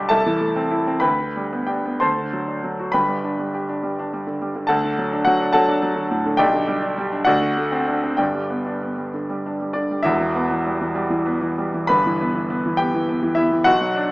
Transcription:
Already playing: B1 D3 G3 D4 G4 D5 B5 D6
0.09 C2 A4 E5 A5
0.26 E3
0.41 A3
0.56 C4
0.71 E4
0.87 C4
1.00 D2 B4 G5 B5
1.20 D3
1.36 G3
1.53 B3
1.67 D4 G4 G5
1.85 B3
2.00 D2 C5 A5 C6
2.18 D3
2.33 F#3
2.48 D4
2.64 F#3
2.79 F#4
2.92 G1 G2 B4 G5 B5
3.08 G3
3.24 D4
3.39 G3
3.54 G4
3.69 D4
3.83 G3
3.99 D4
4.13 G3
4.27 D3
4.42 G3
4.55 D3
4.67 D2 A4 F#5 A5
4.85 D3
4.98 F#3
5.13 D4
5.25 F#3 F#4 F#5
5.41 D4
5.53 F#3 A4 F#5 A5
5.68 D4
5.83 F#3
5.96 D3
6.11 A2
6.26 D3
6.37 B1 G4 D5 G5
6.53 D3
6.68 G3
6.82 D4
6.98 G3
7.12 D4
7.25 D2 F#4 D5 F#5
7.42 D3
7.57 A3
7.72 C4
7.88 D4
8.04 C4
8.17 G1 G2 G4 D5 G5
8.35 G3
8.50 B3
8.66 D4
8.83 B3
8.98 G3
9.14 D3
9.30 G3
9.46 D4
9.61 G3
9.73 D3 D4 D5
9.91 G3
10.03 E1 E2 E4 E5
10.21 E3
10.35 B3
10.51 E3
10.67 G3
10.81 E3
10.95 G3
11.10 E3
11.26 B3
11.41 E3
11.58 G3
11.74 E3
11.87 G1 G2 B4 B5
12.06 E3
12.21 B3
12.35 E3
12.50 B3
12.66 E3
12.77 B3 G4 G5
12.94 E3
13.09 B3
13.23 E3
13.35 B3 E4 E5
13.52 E3
13.64 B1 F#4 F#5
13.81 F#3
13.96 D4

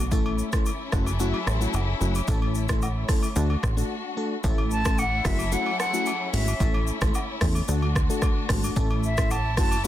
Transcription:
Already playing: B1 A3 D4 F#4
0.11 A1 A3 C#4 E4 A4, kick, shaker
0.26 high agogo
0.39 shaker
0.52 A3 C#4 E4 A4, kick, cross-stick, shaker
0.66 high agogo, shaker
0.92 F#1 F#3 A3 C#4 E4 F#4 G#4 A4, kick, cross-stick, shaker
1.06 high agogo, shaker
1.20 A3 C#4 E4 F#4, shaker
1.34 high agogo
1.47 A1, cross-stick, shaker
1.60 A3 C#4 E4 F#4, shaker
1.74 F#1, high agogo, low woodblock, shaker
2.00 F#1 A3 C#4 E4 F#4, shaker
2.15 high agogo, shaker
2.28 A1 A3 C#4 E4 A4, kick, shaker
2.42 high agogo
2.55 shaker
2.69 A3 C#4 E4 A4, kick, cross-stick, shaker
2.82 high agogo, low woodblock, shaker
3.09 A3 C#4 E4 A4, kick, cross-stick, open hi-hat, shaker
3.23 high agogo, shaker
3.36 D2 A3 D4 F#4 A4, shaker
3.50 high agogo
3.63 A1, kick, cross-stick, shaker
3.77 A3 D4 F#4 A4, shaker
4.17 A3 D4 F#4 A4
4.44 A1 A3 C#4 E4 A4, kick, shaker
4.58 high agogo
4.71 A5, shaker
4.85 A3 C#4 E4 A4, kick, cross-stick, shaker
4.98 F#5, high agogo, low woodblock, shaker
5.25 F#1 F#3 A3 C#4 E4 F#4 G#4 A4 E5, kick, cross-stick, open hi-hat, shaker
5.39 high agogo, shaker
5.52 A3 C#4 E4 F#4 F#5, shaker
5.66 high agogo
5.80 F#5, cross-stick, shaker
5.93 A3 C#4 E4 F#4, shaker
6.06 high agogo, shaker
6.33 G#1 A3 C#4 E4 F#4 E5, open hi-hat, shaker
6.48 high agogo, shaker
6.60 A1 A3 C#4 E4 A4, kick, shaker
6.74 high agogo
6.87 shaker
7.01 A1 A3 C#4 E4 A4, kick, cross-stick, shaker
7.14 high agogo, low woodblock, shaker
7.41 E2 A3 C#4 E4 A4, kick, cross-stick, open hi-hat, shaker
7.55 high agogo, shaker
7.68 D2 A3 D4 F#4 A4, shaker
7.82 high agogo
7.96 kick, cross-stick, shaker
8.09 A3 D4 F#4 A4, shaker
8.22 kick, cross-stick, high agogo, shaker
8.49 G#1 A3 D4 F#4 A4, kick, cross-stick, open hi-hat, shaker
8.64 high agogo, shaker
8.76 A1 A3 C#4 E4 A4, kick, shaker
8.91 high agogo
9.03 E5, shaker
9.17 A3 C#4 E4 A4, kick, cross-stick, shaker
9.31 A5, high agogo, low woodblock, shaker
9.57 F#1 F#3 A3 C#4 E4 F#4 A4 A5, kick, cross-stick, open hi-hat, shaker
9.71 high agogo, shaker

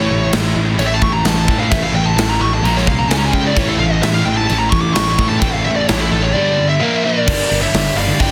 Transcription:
Already playing: A2 E3 A3 C#5
0.10 A1 A2 E3
0.32 A1 A2 E3, snare, crash
0.55 A1 A2 E3
0.78 A1 A2 E3 A3 C#5, crash
0.87 E5
0.94 A5
1.01 A1 A2 E3 C#6, kick
1.13 A#5
1.23 A1 A2 E3 A5, snare, crash
1.48 A2 E3 A3, kick
1.60 F5
1.70 A1 A2 E3 A3 E5, kick, crash
1.84 F5
1.92 A1 A2 E3 G5
2.06 A5
2.16 A1 A2 E3 A5, snare, crash
2.30 A#5
2.39 A1 A2 E3 C#6
2.54 A5
2.62 A#1 A#2 F3 A#3 A#5, crash
2.77 C#5, snare
2.87 C2 A#2 F3 F5, kick
2.98 A#5
3.08 C#2 C#3 G#3 C#4 G#5, snare, crash
3.19 A#5
3.25 G#5
3.33 C#3 G#3 C#4 G5, kick
3.47 D5
3.55 A1 A2 E3 A3 C#5, kick, crash
3.69 A4
3.78 A1 A2 E3 F5
3.91 D#5
4.02 A1 A2 E3 E5, snare, crash
4.14 F5
4.25 A1 A2 E3 G5
4.37 A5
4.47 A1 A2 E3 A3 A5, crash
4.58 A#5
4.70 A1 A2 E3 C#6, kick
4.81 D6
4.94 A1 A2 E3 C#6, snare, crash
5.18 A2 E3 A3, kick
5.29 A5
5.40 A1 A2 E3 A3 G5, kick, crash
5.53 F5
5.65 A1 A2 E3 E5
5.76 D5
5.88 A1 A2 E3 C#5, snare, crash
6.00 E4
6.12 A1 A2 E3 A4
6.22 C#5
6.34 G2 D3 G3 D5
6.58 G2 D3
6.69 E5
6.80 A#2 F3 A#3 A#4 E5 F5
7.04 A#2 F3 A#3 A#4 D5
7.28 G1 G2 D3 G3, kick, crash
7.50 G1 G2 D3 G3, open hi-hat
7.62 G2 D3 C#5 E5
7.73 G1 G2 D3 G3, snare, open hi-hat
7.96 G1 G2 D3 G3 D5 F5, open hi-hat
8.08 G2 D3
8.19 G1 G2 D3 G3 D5 G5, kick, open hi-hat

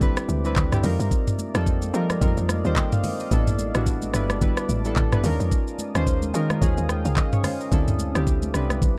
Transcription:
Already playing: C2 C4 D4 E4 G4 A4 D5 E5 D6
0.00 G3 C4 D4 E4 B4, kick, low conga, shaker
0.17 cross-stick, shaker
0.29 D2, high conga, shaker
0.44 G3 C4 D4 E4 B4, shaker
0.56 D2, kick, clap, low conga, shaker
0.72 G3 C4 D4 E4 G4, cross-stick, mid tom, shaker
0.83 F2 G3 A#3 C4 D#4 F4 A#4 D#5 F5, open hi-hat, high conga, low conga, shaker
0.99 G2, shaker
1.11 kick, shaker
1.27 mid tom, shaker
1.38 high conga, shaker
1.54 F2 G3 C4 D#4 F4 A4, cross-stick, shaker
1.66 kick, shaker
1.82 high conga, shaker
1.93 F3 G3 C4 D#4 F4 A#4, shaker
2.10 cross-stick, high conga, shaker
2.21 F2 G3 C4 D#4 F4 A#4, kick, low conga, shaker
2.37 F2, shaker
2.49 cross-stick, high conga, shaker
2.65 D#2 G3 C4 D#4 F4 C5, shaker
2.76 G5, kick, clap, low conga, shaker
2.92 F5, mid tom, shaker
3.04 open hi-hat, high conga, low conga, shaker
3.20 D#5, shaker
3.31 A1 G3 B3 D4 E4 A4 B4 A5 D6, kick, shaker
3.47 mid tom, shaker
3.59 high conga, shaker
3.75 A1 G3 B3 D4 E4 F#4, cross-stick, shaker
3.86 kick, shaker
4.02 high conga, shaker
4.14 G1 G3 B3 D4 E4 B4, cross-stick, shaker
4.30 cross-stick, high conga, shaker
4.41 G3 B3 D4 E4 B4, kick, low conga, shaker
4.57 cross-stick, shaker
4.69 A1, high conga, shaker
4.85 G3 B3 D4 E4 A4, shaker
4.96 A1, kick, clap, low conga, shaker
5.12 G3 B3 D4 E4 B4, cross-stick, mid tom, shaker
5.24 D#2 G#3 C#4 D#4 F4 A#4 F5 G#5 D#6, open hi-hat, high conga, low conga, shaker
5.40 F2, shaker
5.51 kick, shaker
5.68 shaker
5.79 high conga, shaker
5.95 D#2 G#3 C#4 D#4 F4 C5, cross-stick, shaker
6.07 kick, shaker
6.22 high conga, shaker
6.34 D#3 G#3 C#4 D#4 F4 A#4, shaker
6.50 cross-stick, high conga, shaker
6.61 D#2 G#3 C#4 D#4 F4 G#4, kick, low conga, shaker
6.77 D#2, shaker
6.89 G5, cross-stick, high conga, shaker
7.05 C#2 F5, shaker
7.17 D#5, kick, clap, low conga, shaker
7.33 C#5, mid tom, shaker
7.44 C5, cross-stick, open hi-hat, high conga, low conga, shaker
7.60 A#4, shaker
7.71 D2 G3 C4 D4 E4 A4 C5 E5 G5 D6, kick, shaker
7.88 mid tom, shaker
7.99 high conga, shaker
8.15 D2 G3 C4 D4 E4 G4, cross-stick, shaker
8.27 kick, shaker
8.42 high conga, shaker
8.54 C2 G3 C4 D4 E4 B4, cross-stick, shaker
8.70 cross-stick, high conga, shaker
8.82 kick, low conga, shaker

